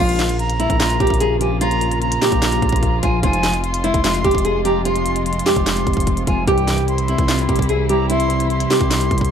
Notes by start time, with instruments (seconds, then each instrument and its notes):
0.00 808-style bass A#1, analog polysynth C#2 A#2 F3, tine electric piano A#2, string section C#3 F3 A#3 F4, nylon-string guitar F4, flute F5
0.09 closed hi-hat
0.19 tine electric piano A#2, snare, clap, closed hi-hat
0.29 closed hi-hat
0.39 flute A#5, closed hi-hat
0.50 closed hi-hat
0.59 tine electric piano A#3, nylon-string guitar E4, closed hi-hat
0.70 808-style bass A#1, kick, closed hi-hat
0.80 tine electric piano A#2, nylon-string guitar F4, snare, clap, closed hi-hat
0.90 closed hi-hat
1.00 808-style bass A#1, tine electric piano A#2, nylon-string guitar G4, kick, closed hi-hat
1.07 kick, closed hi-hat
1.14 closed hi-hat
1.20 tine electric piano A#2, nylon-string guitar G#4, closed hi-hat
1.41 tine electric piano F3, nylon-string guitar G4, flute G#5, closed hi-hat
1.61 tine electric piano A#2, nylon-string guitar F4, flute A#5, closed hi-hat
1.71 closed hi-hat
1.81 tine electric piano A#2, closed hi-hat
1.92 closed hi-hat
2.02 flute A#5, closed hi-hat
2.12 closed hi-hat
2.21 tine electric piano A#3, nylon-string guitar G4, snare, clap, open hi-hat
2.32 808-style bass A#1, kick, closed hi-hat
2.42 tine electric piano A#2, snare, clap, closed hi-hat
2.52 closed hi-hat
2.62 808-style bass A#1, tine electric piano A#2, kick, closed hi-hat
2.69 kick, closed hi-hat
2.76 closed hi-hat
2.82 tine electric piano A#2, kick, closed hi-hat
3.03 808-style bass A#1, tine electric piano F3, nylon-string guitar F4, flute G#5, kick, closed hi-hat
3.23 808-style bass F1, analog polysynth C2 G#2 F3, tine electric piano F2, string section C3 G#3, nylon-string guitar F4, flute G#5, kick, closed hi-hat
3.33 closed hi-hat
3.43 tine electric piano F2, snare, clap, closed hi-hat
3.54 closed hi-hat
3.64 flute C6, closed hi-hat
3.74 closed hi-hat
3.84 tine electric piano G#3, nylon-string guitar E4, closed hi-hat
3.94 808-style bass F1, kick, closed hi-hat
4.04 tine electric piano F2, nylon-string guitar F4, snare, clap, closed hi-hat
4.14 closed hi-hat
4.24 808-style bass F1, tine electric piano F2, nylon-string guitar G4, kick, closed hi-hat
4.31 kick, closed hi-hat
4.38 closed hi-hat
4.44 tine electric piano F2, nylon-string guitar G#4, closed hi-hat
4.65 tine electric piano F3, nylon-string guitar G4, flute A#5, closed hi-hat
4.85 tine electric piano F2, nylon-string guitar F4, flute C6, closed hi-hat
4.96 closed hi-hat
5.06 tine electric piano F2, closed hi-hat
5.16 closed hi-hat
5.26 flute C6, closed hi-hat
5.33 closed hi-hat
5.39 closed hi-hat
5.46 tine electric piano G#3, nylon-string guitar G4, snare, clap, open hi-hat
5.56 808-style bass F1, kick, closed hi-hat
5.66 tine electric piano F2, snare, clap, closed hi-hat
5.77 closed hi-hat
5.86 808-style bass F1, tine electric piano F2, kick, closed hi-hat
5.94 kick, closed hi-hat
6.00 closed hi-hat
6.07 tine electric piano F2, kick, closed hi-hat
6.17 closed hi-hat
6.26 808-style bass F1, tine electric piano F3, nylon-string guitar F4, flute G#5, kick, closed hi-hat
6.47 808-style bass C2, analog polysynth C2 G2 E3, tine electric piano C3, string section E3 G3 E4, nylon-string guitar G4, flute G5, kick, closed hi-hat
6.58 closed hi-hat
6.68 tine electric piano C3, snare, clap, closed hi-hat
6.78 closed hi-hat
6.88 flute C6, closed hi-hat
6.98 closed hi-hat
7.08 tine electric piano C4, nylon-string guitar E4, closed hi-hat
7.18 808-style bass C2, kick, closed hi-hat
7.28 tine electric piano C3, nylon-string guitar F4, snare, clap, closed hi-hat
7.39 closed hi-hat
7.49 808-style bass C2, tine electric piano C3, nylon-string guitar G4, kick, closed hi-hat
7.56 kick, closed hi-hat
7.62 closed hi-hat
7.69 tine electric piano C3, nylon-string guitar G#4, closed hi-hat
7.89 tine electric piano G3, nylon-string guitar G4, flute A#5, closed hi-hat
8.10 tine electric piano C3, nylon-string guitar E4, flute C6, closed hi-hat
8.20 closed hi-hat
8.30 tine electric piano C3, closed hi-hat
8.40 closed hi-hat
8.50 flute C6, closed hi-hat
8.60 closed hi-hat
8.70 tine electric piano C4, nylon-string guitar G4, snare, clap, open hi-hat
8.81 808-style bass C2, kick, closed hi-hat
8.91 tine electric piano C3, snare, clap, closed hi-hat
9.01 closed hi-hat
9.11 808-style bass C2, tine electric piano C3, kick, closed hi-hat
9.18 kick, closed hi-hat
9.25 closed hi-hat